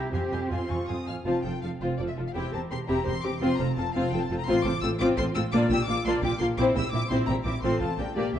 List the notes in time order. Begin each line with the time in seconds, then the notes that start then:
Already playing: E4 G4
0.12 F2 C4 G4 F5 G#5 C6
0.31 F2 F5 G#5 C6
0.50 F2 F4 F5 G#5 C6
0.69 F2 F5 G#5 C#6
0.88 F2 F5 G#5 D#6
1.07 F2 F5 G#5 F6
1.25 F1 F2 F3 C4 F4 A5
1.43 F1 F2 F3 F4 A4 C5 G5
1.62 F1 F2 F3 F4 A4 F5
1.81 F1 F2 F3 C4 F4 C5
1.98 F1 F2 F3 F4 A4 C5 D5
2.08 E5
2.16 F1 F2 F3 F4 A4
2.27 F5
2.34 E1 E2 C4 E4 G4 G5
2.52 E1 E2 C4 G4 A#4 C5 A5
2.71 E1 E2 C4 G4 A#4 C6
2.87 E1 E2 C4 E4 G4 A#5
3.04 E1 E2 C4 G4 A#4 C5 C6
3.23 E1 E2 C4 G4 A#4 D6
3.41 F1 F2 C4 F4 C6
3.58 F1 F2 C4 F4 A4 C5 A#5
3.76 F1 F2 C4 F4 A4 A5
3.94 F1 F2 C4 F4 F5
4.11 F1 F2 C4 F4 A4 C5 G5
4.22 A5
4.30 F1 F2 C4 F4 A4
4.39 A#5
4.47 A1 A2 C4 F4 C6
4.64 A1 A2 C4 F4 A4 C5 D6
4.82 A1 A2 C4 F4 A4 E6
5.00 A1 A2 C4 F4 D6
5.16 A1 A2 C4 F4 A4 C5 C6
5.35 A1 A2 C4 F4 A4 E6
5.52 A#1 A#2 A#3 D4 F4 D5 D6
5.70 A#1 A#2 A#3 F4 G4 G5 E6
5.87 A#1 A#2 A#3 F4 F5 D6
6.05 A#1 A#2 A#3 D4 F4 D5 C6
6.22 A#1 A#2 A#3 F4 G4 G5 D6
6.40 A#1 A#2 A#3 F4 F5 C6
6.57 A#1 A#2 C4 E4 C5 D6
6.75 A#1 A#2 C4 E4 G4 G5 E6
6.92 A#1 A#2 C4 E4 E5 D6
7.09 A#1 A#2 C4 E4 C5 C6
7.27 A#1 A#2 C4 E4 G4 G5 A#5
7.44 A#1 A#2 C4 E4 E5 D6
7.62 A1 A2 C4 F4 A4 C6
7.80 A1 A2 C4 F4 A4 F5 A5
7.98 A#1 A#2 A#3 D4 G4 A#4 G5
8.16 A#1 A#2 A#3 G4 D5
8.33 C2 C3 A#3 G4 C5 E5